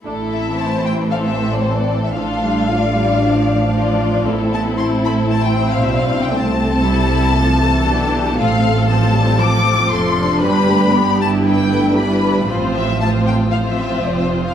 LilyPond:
<<
  \new Staff \with { instrumentName = "Violin section" } { \time 4/4 \key a \minor \tempo 4 = 116 r8 e''8 a''8 g''8 f''16 e''8 d''16 c''16 d''8 e''16 | f''1 | r8 a''8 c'''8 b''8 a''16 g''8 f''16 e''16 f''8 g''16 | a''1 |
\key f \lydian f''4 a''4 d'''4 c'''4 | b''4. a''8 g''4 b''4 | r8 e''8 a''8 g''8 f''16 e''8. d''16 e''8 f''16 | }
  \new Staff \with { instrumentName = "Violin section" } { \time 4/4 \key a \minor << { a'4 c''4 c''4 a'4 | a'4 d''2 d''4 | a'4 a'4 c''2 | c''8 a'4. a'2 |
\key f \lydian a'2. a'4 | b'4 g'4 b'4 b'4 | c''4 c''4 c''2 | } \\ { e'2 a'2 | f'4 d'2 f'8 f'8 | e'2. d'4 | c'4 e'8 e'8 a'4 g'4 |
f'8 f'4. a'4 a'4 | g'4 d'2 e'4 | f'4 f'4 f'2 | } >> }
  \new Staff \with { instrumentName = "Viola section" } { \time 4/4 \key a \minor << { d'8 c'4. c'2 | d'4 f'4 d'8 d'4. | c'4 e'4 e'2 | c'4 c'4 a4 d'4 |
\key f \lydian c'4 c'2 a8 d'8~ | d'4 d'8 e'4. d'4 | c'4 c'4 c'2 | } \\ { a4 e2. | f8 g8 a8 g8 f4 f4 | a8 b8 c'4 c'2 | a4 g4 f8 e4. |
a4 f8 g8 f8 f4. | g8 a8 b4 b8 a8 g4 | f4 f4 f2 | } >> }
  \new Staff \with { instrumentName = "Cello section" } { \clef bass \time 4/4 \key a \minor a,1 | a,1 | a,2. b,4 | c2. b,4 |
\key f \lydian a,2. f,4 | g,1 | a,2. f,4 | }
  \new Staff \with { instrumentName = "Double bass section" } { \clef bass \time 4/4 \key a \minor a,,1 | a,,1 | a,,2. b,,4 | c,2. b,,4 |
\key f \lydian a,,2. f,,4 | g,,1 | a,,2. f,,4 | }
>>